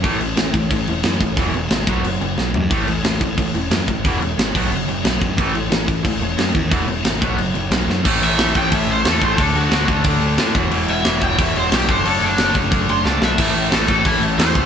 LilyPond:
<<
  \new Staff \with { instrumentName = "Overdriven electric guitar" } { \time 4/4 \key e \mixolydian \tempo 4 = 180 r1 | r1 | r1 | r1 |
r1 | r1 | r8 e''4 g''8 e''8 c''8 a'8 c''8 | a'8 fis'4 r2 r8 |
r8 e''4 g''8 e''8 c''8 g'8 c''8 | a'8 d'4 r4 c'''8 a''8 e''8~ | e''4 a'8 a'8 e'8 r8 c''4 | }
  \new Staff \with { instrumentName = "Overdriven electric guitar" } { \clef bass \time 4/4 \key e \mixolydian <a, e a>8 <a, e>8 <a, e>8 <a, e>8 <a, e>8 <a, e>8 <a, e>8 <a, e>8 | <e, b, e>8 <e, b,>8 <e, b,>8 <b, fis b>8 <b, fis>8 <b, fis>8 <b, fis>8 <b, fis>8 | <a, e a>8 <a, e>8 <a, e>8 <a, e>8 <a, e>8 <a, e>8 <a, e>8 <a, e>8 | <e, b, e>8 <e, b,>8 <e, b,>8 <b, fis b>8 <b, fis>8 <b, fis>8 <b, fis>8 <b, fis>8 |
<a, e a>8 <a, e>8 <a, e>8 <a, e>8 <a, e>8 <a, e>8 <a, e>8 <a, e>8 | <e, b, e>8 <e, b,>8 <e, b,>8 <b, fis b>8 <b, fis>8 <b, fis>8 <b, fis>8 <b, fis>8 | <a, e a>4 <a, e a>8 <a, e a>8 <a, e a>4 <a, e a>8 <a, e a>8 | <d a d'>4 <d a d'>8 <d a d'>8 <d a d'>4 <d a d'>8 <e, b, e>8 |
<e, b, e>4 <e, b, e>8 <e, b, e>8 <e, b, e>4 <e, b, e>8 <d a d'>8 | <d a d'>4 <d a d'>8 <d a d'>8 <d a d'>4 <d a d'>8 <d a d'>8 | <a, e a>4 <a, e a>8 <a, e a>8 <a, e a>4 <a, e a>8 <a, e a>8 | }
  \new Staff \with { instrumentName = "Picked electric bass" } { \clef bass \time 4/4 \key e \mixolydian a,,8 a,,8 a,,8 a,,8 a,,8 e,,8 fis,8 a,,8 | e,,8 e,,8 gis,,8 b,,8 fis,,8 fis,,8 b,,8 fis,8 | a,,8 a,,8 a,,8 a,,8 a,,8 e,,8 fis,8 a,,8 | e,,8 e,,8 gis,,8 b,,8 fis,,8 fis,,8 b,,8 fis,8 |
a,,8 a,,8 a,,8 a,,8 a,,8 e,,8 fis,8 dis,8 | e,,8 e,,8 gis,,8 b,,8 fis,,8 fis,,8 b,,8 fis,8 | a,,8 a,,8 a,,8 a,,8 a,,8 a,,8 e,8 a,,8 | d,8 d,8 d,8 d,8 d,8 d,8 a,8 e,,8 |
e,,8 e,,8 e,,8 e,,8 e,,8 e,,8 b,,8 fis,,8 | fis,,8 fis,,8 fis,,8 fis,,8 fis,,8 fis,,8 cis,8 b,,8 | a,,8 a,,8 a,,8 a,,8 a,,8 a,,8 e,8 cis,8 | }
  \new DrumStaff \with { instrumentName = "Drums" } \drummode { \time 4/4 <cymc bd>8 cymc8 <cymc sn>8 <cymc bd>8 <cymc bd>8 cymc8 <cymc sn>8 <cymc bd>8 | <cymc bd>8 cymc8 <cymc sn>8 <cymc bd>8 cymc8 cymc8 sn8 tomfh8 | <cymc bd>8 cymc8 <cymc sn>8 <cymc bd>8 <cymc bd>8 cymc8 <cymc sn>8 <cymc bd>8 | <cymc bd>8 cymc8 <cymc sn>8 <cymc bd>8 cymc8 cymc8 <cymc sn>8 <cymc bd>8 |
<cymc bd>8 cymc8 <cymc sn>8 <cymc bd>8 <cymc bd>8 cymc8 <cymc sn>8 <cymc bd>8 | <cymc bd>8 cymc8 <cymc sn>8 <cymc bd>8 cymc8 cymc8 <cymc sn>8 sn8 | <cymc bd>8 cymc8 <cymc sn>8 <cymc bd>8 <cymc bd>8 cymc8 <cymc sn>8 <cymc bd>8 | <cymc bd>8 cymc8 <cymc sn>8 <cymc bd>8 <cymc bd>8 cymc8 <cymc sn>8 <cymc bd>8 |
cymc8 cymc8 <cymc sn>8 <cymc bd>8 <cymc bd>8 cymc8 <cymc sn>8 <cymc bd>8 | cymc8 cymc8 <cymc sn>8 <cymc bd>8 <cymc bd>8 cymc8 sn8 sn8 | <cymc bd>8 cymc8 <cymc sn>8 <cymc bd>8 <cymc bd>8 cymc8 <cymc sn>8 <cymc bd>8 | }
>>